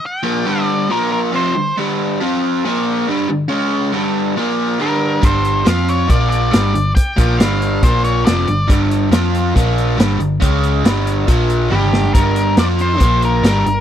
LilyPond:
<<
  \new Staff \with { instrumentName = "Lead electric guitar" } { \time 4/4 \key g \minor \tempo 4 = 139 g''4 d''4 bes'8 bes'8 c''4 | r1 | r2. bes'4 | c''4 f''8 cis''8 d''8 d''4. |
g''4 f''4 c''8 cis''8 d''4 | r1 | r2. g'4 | bes'4 d''8 c''4 bes'4. | }
  \new Staff \with { instrumentName = "Overdriven electric guitar" } { \clef bass \time 4/4 \key g \minor r8 <bes, f bes>8 <g, d g>4 <bes, f bes>4 <f, c f>8 <g, d>8 | <g, d g>4 <f c' f'>4 <bes, f bes>4 <g, d g>8 <g, d>8 | <cis gis cis'>4 <g, d g>4 <bes, f bes>4 <g, d g>4 | <g, d g>4 <f c' f'>4 <bes, f bes>4 <g, d g>8 <g, d>8 |
r8 <bes, f bes>8 <g, d g>4 <bes, f bes>4 <f, c f>8 <g, d>8 | <g, d g>4 <f c' f'>4 <bes, f bes>4 <g, d g>8 <g, d>8 | <cis gis cis'>4 <g, d g>4 <bes, f bes>4 <g, d g>4 | <g, d g>4 <f c' f'>4 <bes, f bes>4 <g, d g>8 <g, d>8 | }
  \new Staff \with { instrumentName = "Picked electric bass" } { \clef bass \time 4/4 \key g \minor r1 | r1 | r1 | g,,4 f,4 bes,,4 g,,8 g,,8 |
r8 bes,,8 g,,4 bes,,4 f,,8 g,,8 | g,,4 f,4 bes,,4 g,,8 g,,8 | cis,4 g,,4 bes,,4 g,,4 | g,,4 f,4 bes,,4 g,,8 g,,8 | }
  \new DrumStaff \with { instrumentName = "Drums" } \drummode { \time 4/4 r4 r4 r4 r4 | r4 r4 r4 r4 | r4 r4 r4 r4 | <hh bd>8 hh8 <hh sn>8 hh8 <hh bd>8 hh8 <hh sn>8 hh8 |
<hh bd>8 <hh bd>8 <hh sn>8 hh8 <hh bd>8 hh8 <hh sn>8 hh8 | <hh bd>8 hh8 <hh sn>8 hh8 <hh bd>8 hh8 <hh sn>8 hh8 | <hh bd>8 hh8 <hh sn>8 hh8 <hh bd>8 hh8 tommh16 toml16 sn16 tomfh16 | <hh bd>8 hh8 <hh sn>8 hh8 <hh bd>8 hh8 <hh sn>8 hh8 | }
>>